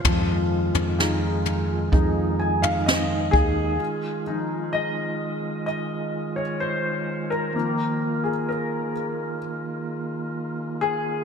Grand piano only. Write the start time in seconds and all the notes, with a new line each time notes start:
0.06 F3
0.98 D#4 F4 G#4
1.92 D#4 F4 G#4
2.40 G#5
2.62 F5
2.86 D#5
3.31 G#4
4.26 F3 G#3 D#4
4.73 D#5
5.66 D#5
6.36 C#5
6.60 C5
7.30 A#4
7.54 D#3 F3 A#3
8.24 G#4
8.49 A#4
10.81 G#4